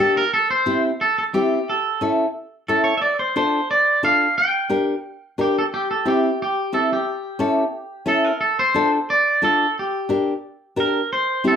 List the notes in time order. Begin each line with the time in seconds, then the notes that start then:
0.00 A#3 D4 G4 A4
0.17 A#4
0.34 A4
0.51 C5
0.66 C4 E4 G4
1.01 A4
1.18 A4
1.34 C4 E4 G4
1.69 A4
2.01 C#4 E4 A4
2.68 C#4 E4 A4
2.84 C#5
2.97 E5
3.02 D5
3.19 C5
3.36 D4 F4 A4 C5
3.71 D5
4.03 D4 F4 A4 F5
4.38 G5
4.69 D4 G4 A#4
5.38 D4 G4 A#4
5.59 A4
5.74 G4
5.91 A4
6.05 C4 E4 G4
6.42 G4
6.72 C4 E4 G4 A4
6.93 G4
7.39 C#4 E4 A4
8.06 C#4 E4 A4
8.25 A#4
8.41 A4
8.59 C5
8.74 D4 F4 A4
9.10 D5
9.42 D4 F4 A4
9.79 G4
10.09 D4 G4 A#4
10.76 D4 G4 A#4
11.13 C5
11.44 C4 E4 G4 A4